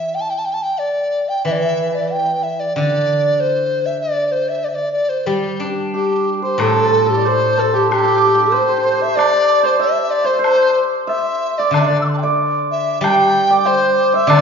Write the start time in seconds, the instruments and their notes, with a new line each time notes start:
Already playing: guzheng E3, dizi E5
0.15 dizi G5
0.21 dizi A5
0.30 dizi G5
0.39 dizi A5
0.45 dizi G5
0.54 dizi A5
0.63 dizi G5
0.79 dizi D5
1.29 dizi G5
1.45 guzheng E3, dizi E5
1.52 dizi D5
1.59 dizi E5
1.95 dizi D5
2.12 dizi G5
2.43 dizi E5
2.60 dizi D5
2.76 guzheng D3, dizi D5
3.40 dizi C5
3.86 dizi E5
4.01 dizi D5
4.32 dizi C5
4.49 dizi E5
4.64 dizi D5
4.69 dizi E5
4.75 dizi D5
4.92 dizi D5
5.09 dizi C5
5.26 guzheng G3, dizi G4
5.60 guzheng D4
5.94 hammered dulcimer G4, dizi G4
6.42 hammered dulcimer C5, dizi C5
6.58 guzheng A2, hammered dulcimer A4, dizi A4, high woodblock
6.69 hammered dulcimer A4
6.77 hammered dulcimer A4
6.84 hammered dulcimer A4
6.91 hammered dulcimer A4
6.98 hammered dulcimer A4
7.07 dizi G4, hammered dulcimer A4
7.13 hammered dulcimer A4
7.17 hammered dulcimer D5
7.25 hammered dulcimer C5, dizi C5
7.58 hammered dulcimer A4, dizi A4
7.74 hammered dulcimer G4, dizi G4
7.91 hammered dulcimer G4, dizi G4, high woodblock
7.99 hammered dulcimer G4
8.04 hammered dulcimer G4
8.12 hammered dulcimer G4
8.17 hammered dulcimer G4
8.27 hammered dulcimer G4
8.35 hammered dulcimer G4
8.40 hammered dulcimer G4
8.52 hammered dulcimer C5, dizi C5
8.61 hammered dulcimer C5
8.69 hammered dulcimer C5
8.78 hammered dulcimer C5
8.84 hammered dulcimer C5
8.93 hammered dulcimer C5
9.00 hammered dulcimer C5, dizi E5
9.07 hammered dulcimer C5
9.16 dizi D5, hammered dulcimer D5, high woodblock
9.63 hammered dulcimer C5, dizi C5
9.80 hammered dulcimer E5, dizi E5
10.11 dizi D5
10.24 hammered dulcimer C5, dizi C5
10.39 hammered dulcimer C5, dizi C5
10.44 high woodblock
11.07 hammered dulcimer E5, dizi E5, low woodblock
11.58 dizi D5, hammered dulcimer D5
11.71 guzheng D3, dizi D5, high woodblock
11.75 hammered dulcimer D5
11.81 dizi E5
11.87 dizi D5, hammered dulcimer D5
12.02 dizi D6 E6
12.09 dizi C6
12.13 dizi A5
12.18 dizi E5 G5
12.23 hammered dulcimer D5
12.71 dizi E5
13.01 guzheng G3, dizi G5, hammered dulcimer G5, high woodblock
13.51 hammered dulcimer D5
13.65 hammered dulcimer C5, dizi C5
14.14 hammered dulcimer E5, dizi E5
14.27 guzheng D3, hammered dulcimer D5, dizi D5, high woodblock